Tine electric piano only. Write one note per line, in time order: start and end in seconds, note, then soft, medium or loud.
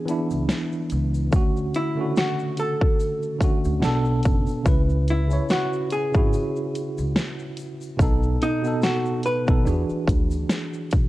0.00 0.05 E3 medium
0.00 0.07 B3 medium
0.00 0.09 D4 medium
0.00 0.11 E4 medium
0.00 1.35 G#4 medium
0.05 0.85 E3 medium
0.05 0.86 B3 medium
0.05 0.87 D4 medium
0.11 0.88 E4 medium
1.31 1.71 D3 medium
1.31 1.72 A3 medium
1.31 1.73 C#4 medium
1.36 1.74 F#4 medium
1.95 2.02 C#3 medium
1.95 2.87 A3 medium
1.95 2.88 C#4 medium
2.01 2.89 D3 medium
2.01 2.89 F#4 medium
3.39 3.82 D3 medium
3.39 3.82 A3 medium
3.39 3.83 C#4 medium
3.44 3.84 F#4 medium
3.80 4.50 B2 medium
3.80 4.51 B3 medium
3.80 4.52 D4 medium
3.85 4.52 A4 loud
4.63 5.04 C#3 medium
4.63 5.05 C#4 medium
4.63 5.05 E4 medium
4.68 5.06 B4 medium
5.28 5.80 C#3 medium
5.28 5.81 C#4 medium
5.28 5.82 E4 medium
5.33 5.83 C#5 medium
6.12 7.15 C#3 medium
6.12 7.16 C#4 medium
6.12 7.16 E4 medium
6.18 7.17 F#4 medium
7.97 8.37 B2 medium
7.97 8.38 B3 medium
7.97 8.39 D#4 medium
8.02 8.40 A4 medium
8.62 9.14 B2 medium
8.62 9.15 B3 medium
8.62 9.15 D#4 medium
8.67 9.16 A4 medium
9.45 9.65 B2 medium
9.45 9.66 B3 medium
9.45 9.66 D#4 medium
9.50 9.67 A4 medium
9.64 10.99 E3 medium
9.64 11.00 D4 medium
9.64 11.01 F#4 medium
9.69 11.02 G#4 medium